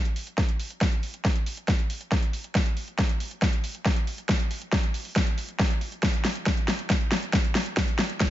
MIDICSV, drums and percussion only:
0, 0, Header, 1, 2, 480
1, 0, Start_track
1, 0, Tempo, 434783
1, 898, Time_signature, 4, 2, 24, 8
1, 9163, End_track
2, 0, Start_track
2, 0, Title_t, "Drums"
2, 58, Note_on_c, 9, 42, 65
2, 168, Note_off_c, 9, 42, 0
2, 177, Note_on_c, 9, 46, 94
2, 288, Note_off_c, 9, 46, 0
2, 297, Note_on_c, 9, 42, 65
2, 408, Note_off_c, 9, 42, 0
2, 417, Note_on_c, 9, 36, 111
2, 417, Note_on_c, 9, 38, 49
2, 417, Note_on_c, 9, 42, 63
2, 528, Note_off_c, 9, 36, 0
2, 528, Note_off_c, 9, 38, 0
2, 528, Note_off_c, 9, 42, 0
2, 537, Note_on_c, 9, 42, 64
2, 647, Note_off_c, 9, 42, 0
2, 657, Note_on_c, 9, 46, 100
2, 768, Note_off_c, 9, 46, 0
2, 778, Note_on_c, 9, 42, 64
2, 888, Note_off_c, 9, 42, 0
2, 897, Note_on_c, 9, 36, 114
2, 897, Note_on_c, 9, 38, 53
2, 897, Note_on_c, 9, 42, 63
2, 1007, Note_off_c, 9, 38, 0
2, 1007, Note_off_c, 9, 42, 0
2, 1008, Note_off_c, 9, 36, 0
2, 1017, Note_on_c, 9, 42, 63
2, 1128, Note_off_c, 9, 42, 0
2, 1137, Note_on_c, 9, 46, 98
2, 1248, Note_off_c, 9, 46, 0
2, 1257, Note_on_c, 9, 42, 60
2, 1368, Note_off_c, 9, 42, 0
2, 1377, Note_on_c, 9, 36, 110
2, 1377, Note_on_c, 9, 38, 54
2, 1377, Note_on_c, 9, 42, 67
2, 1487, Note_off_c, 9, 38, 0
2, 1487, Note_off_c, 9, 42, 0
2, 1488, Note_off_c, 9, 36, 0
2, 1497, Note_on_c, 9, 42, 59
2, 1608, Note_off_c, 9, 42, 0
2, 1616, Note_on_c, 9, 46, 109
2, 1727, Note_off_c, 9, 46, 0
2, 1737, Note_on_c, 9, 42, 63
2, 1848, Note_off_c, 9, 42, 0
2, 1857, Note_on_c, 9, 36, 114
2, 1857, Note_on_c, 9, 38, 51
2, 1857, Note_on_c, 9, 42, 64
2, 1967, Note_off_c, 9, 38, 0
2, 1967, Note_off_c, 9, 42, 0
2, 1968, Note_off_c, 9, 36, 0
2, 1977, Note_on_c, 9, 42, 60
2, 2087, Note_off_c, 9, 42, 0
2, 2096, Note_on_c, 9, 46, 107
2, 2207, Note_off_c, 9, 46, 0
2, 2216, Note_on_c, 9, 42, 63
2, 2327, Note_off_c, 9, 42, 0
2, 2337, Note_on_c, 9, 36, 122
2, 2337, Note_on_c, 9, 38, 54
2, 2337, Note_on_c, 9, 42, 65
2, 2447, Note_off_c, 9, 36, 0
2, 2447, Note_off_c, 9, 38, 0
2, 2447, Note_off_c, 9, 42, 0
2, 2456, Note_on_c, 9, 42, 63
2, 2567, Note_off_c, 9, 42, 0
2, 2576, Note_on_c, 9, 46, 100
2, 2687, Note_off_c, 9, 46, 0
2, 2697, Note_on_c, 9, 42, 63
2, 2807, Note_off_c, 9, 42, 0
2, 2816, Note_on_c, 9, 38, 57
2, 2816, Note_on_c, 9, 42, 64
2, 2817, Note_on_c, 9, 36, 114
2, 2927, Note_off_c, 9, 36, 0
2, 2927, Note_off_c, 9, 38, 0
2, 2927, Note_off_c, 9, 42, 0
2, 2936, Note_on_c, 9, 42, 61
2, 3046, Note_off_c, 9, 42, 0
2, 3056, Note_on_c, 9, 46, 100
2, 3166, Note_off_c, 9, 46, 0
2, 3177, Note_on_c, 9, 42, 58
2, 3287, Note_off_c, 9, 42, 0
2, 3296, Note_on_c, 9, 36, 113
2, 3296, Note_on_c, 9, 38, 62
2, 3296, Note_on_c, 9, 42, 62
2, 3407, Note_off_c, 9, 36, 0
2, 3407, Note_off_c, 9, 38, 0
2, 3407, Note_off_c, 9, 42, 0
2, 3416, Note_on_c, 9, 42, 60
2, 3527, Note_off_c, 9, 42, 0
2, 3536, Note_on_c, 9, 46, 107
2, 3647, Note_off_c, 9, 46, 0
2, 3656, Note_on_c, 9, 42, 60
2, 3766, Note_off_c, 9, 42, 0
2, 3776, Note_on_c, 9, 38, 59
2, 3776, Note_on_c, 9, 42, 60
2, 3777, Note_on_c, 9, 36, 116
2, 3887, Note_off_c, 9, 36, 0
2, 3887, Note_off_c, 9, 38, 0
2, 3887, Note_off_c, 9, 42, 0
2, 3897, Note_on_c, 9, 42, 60
2, 4008, Note_off_c, 9, 42, 0
2, 4016, Note_on_c, 9, 46, 109
2, 4127, Note_off_c, 9, 46, 0
2, 4137, Note_on_c, 9, 42, 61
2, 4247, Note_off_c, 9, 42, 0
2, 4256, Note_on_c, 9, 38, 62
2, 4256, Note_on_c, 9, 42, 61
2, 4257, Note_on_c, 9, 36, 120
2, 4367, Note_off_c, 9, 36, 0
2, 4367, Note_off_c, 9, 38, 0
2, 4367, Note_off_c, 9, 42, 0
2, 4377, Note_on_c, 9, 42, 61
2, 4487, Note_off_c, 9, 42, 0
2, 4497, Note_on_c, 9, 46, 103
2, 4607, Note_off_c, 9, 46, 0
2, 4617, Note_on_c, 9, 42, 62
2, 4727, Note_off_c, 9, 42, 0
2, 4736, Note_on_c, 9, 38, 65
2, 4736, Note_on_c, 9, 42, 63
2, 4737, Note_on_c, 9, 36, 113
2, 4847, Note_off_c, 9, 36, 0
2, 4847, Note_off_c, 9, 38, 0
2, 4847, Note_off_c, 9, 42, 0
2, 4856, Note_on_c, 9, 42, 62
2, 4967, Note_off_c, 9, 42, 0
2, 4976, Note_on_c, 9, 46, 105
2, 5086, Note_off_c, 9, 46, 0
2, 5097, Note_on_c, 9, 42, 61
2, 5207, Note_off_c, 9, 42, 0
2, 5216, Note_on_c, 9, 38, 69
2, 5216, Note_on_c, 9, 42, 64
2, 5217, Note_on_c, 9, 36, 118
2, 5327, Note_off_c, 9, 38, 0
2, 5327, Note_off_c, 9, 42, 0
2, 5328, Note_off_c, 9, 36, 0
2, 5337, Note_on_c, 9, 42, 60
2, 5447, Note_off_c, 9, 42, 0
2, 5456, Note_on_c, 9, 46, 107
2, 5566, Note_off_c, 9, 46, 0
2, 5576, Note_on_c, 9, 46, 60
2, 5687, Note_off_c, 9, 46, 0
2, 5697, Note_on_c, 9, 36, 119
2, 5697, Note_on_c, 9, 38, 66
2, 5697, Note_on_c, 9, 42, 60
2, 5807, Note_off_c, 9, 38, 0
2, 5807, Note_off_c, 9, 42, 0
2, 5808, Note_off_c, 9, 36, 0
2, 5817, Note_on_c, 9, 42, 59
2, 5927, Note_off_c, 9, 42, 0
2, 5936, Note_on_c, 9, 46, 108
2, 6047, Note_off_c, 9, 46, 0
2, 6057, Note_on_c, 9, 42, 57
2, 6167, Note_off_c, 9, 42, 0
2, 6177, Note_on_c, 9, 36, 122
2, 6177, Note_on_c, 9, 38, 73
2, 6177, Note_on_c, 9, 42, 61
2, 6287, Note_off_c, 9, 38, 0
2, 6287, Note_off_c, 9, 42, 0
2, 6288, Note_off_c, 9, 36, 0
2, 6298, Note_on_c, 9, 42, 64
2, 6408, Note_off_c, 9, 42, 0
2, 6417, Note_on_c, 9, 46, 98
2, 6527, Note_off_c, 9, 46, 0
2, 6537, Note_on_c, 9, 42, 60
2, 6647, Note_off_c, 9, 42, 0
2, 6656, Note_on_c, 9, 38, 71
2, 6656, Note_on_c, 9, 42, 66
2, 6657, Note_on_c, 9, 36, 114
2, 6767, Note_off_c, 9, 38, 0
2, 6767, Note_off_c, 9, 42, 0
2, 6768, Note_off_c, 9, 36, 0
2, 6776, Note_on_c, 9, 42, 61
2, 6886, Note_off_c, 9, 42, 0
2, 6896, Note_on_c, 9, 38, 72
2, 6896, Note_on_c, 9, 46, 104
2, 7006, Note_off_c, 9, 38, 0
2, 7006, Note_off_c, 9, 46, 0
2, 7016, Note_on_c, 9, 42, 62
2, 7127, Note_off_c, 9, 42, 0
2, 7136, Note_on_c, 9, 38, 77
2, 7136, Note_on_c, 9, 42, 64
2, 7137, Note_on_c, 9, 36, 116
2, 7247, Note_off_c, 9, 36, 0
2, 7247, Note_off_c, 9, 38, 0
2, 7247, Note_off_c, 9, 42, 0
2, 7256, Note_on_c, 9, 42, 59
2, 7367, Note_off_c, 9, 42, 0
2, 7376, Note_on_c, 9, 38, 76
2, 7376, Note_on_c, 9, 46, 104
2, 7486, Note_off_c, 9, 38, 0
2, 7486, Note_off_c, 9, 46, 0
2, 7496, Note_on_c, 9, 42, 62
2, 7607, Note_off_c, 9, 42, 0
2, 7617, Note_on_c, 9, 36, 115
2, 7617, Note_on_c, 9, 38, 75
2, 7617, Note_on_c, 9, 42, 61
2, 7727, Note_off_c, 9, 36, 0
2, 7727, Note_off_c, 9, 38, 0
2, 7727, Note_off_c, 9, 42, 0
2, 7737, Note_on_c, 9, 42, 59
2, 7847, Note_off_c, 9, 42, 0
2, 7856, Note_on_c, 9, 38, 80
2, 7856, Note_on_c, 9, 46, 103
2, 7967, Note_off_c, 9, 38, 0
2, 7967, Note_off_c, 9, 46, 0
2, 7977, Note_on_c, 9, 42, 60
2, 8087, Note_off_c, 9, 42, 0
2, 8097, Note_on_c, 9, 36, 119
2, 8097, Note_on_c, 9, 38, 80
2, 8097, Note_on_c, 9, 42, 60
2, 8207, Note_off_c, 9, 36, 0
2, 8207, Note_off_c, 9, 38, 0
2, 8207, Note_off_c, 9, 42, 0
2, 8217, Note_on_c, 9, 42, 62
2, 8328, Note_off_c, 9, 42, 0
2, 8337, Note_on_c, 9, 38, 77
2, 8337, Note_on_c, 9, 46, 101
2, 8447, Note_off_c, 9, 38, 0
2, 8447, Note_off_c, 9, 46, 0
2, 8457, Note_on_c, 9, 42, 62
2, 8567, Note_off_c, 9, 42, 0
2, 8577, Note_on_c, 9, 36, 105
2, 8578, Note_on_c, 9, 38, 83
2, 8578, Note_on_c, 9, 42, 68
2, 8687, Note_off_c, 9, 36, 0
2, 8688, Note_off_c, 9, 38, 0
2, 8688, Note_off_c, 9, 42, 0
2, 8698, Note_on_c, 9, 42, 67
2, 8808, Note_off_c, 9, 42, 0
2, 8817, Note_on_c, 9, 38, 79
2, 8817, Note_on_c, 9, 46, 93
2, 8928, Note_off_c, 9, 38, 0
2, 8928, Note_off_c, 9, 46, 0
2, 8937, Note_on_c, 9, 42, 62
2, 9048, Note_off_c, 9, 42, 0
2, 9057, Note_on_c, 9, 36, 109
2, 9057, Note_on_c, 9, 38, 87
2, 9057, Note_on_c, 9, 42, 67
2, 9163, Note_off_c, 9, 36, 0
2, 9163, Note_off_c, 9, 38, 0
2, 9163, Note_off_c, 9, 42, 0
2, 9163, End_track
0, 0, End_of_file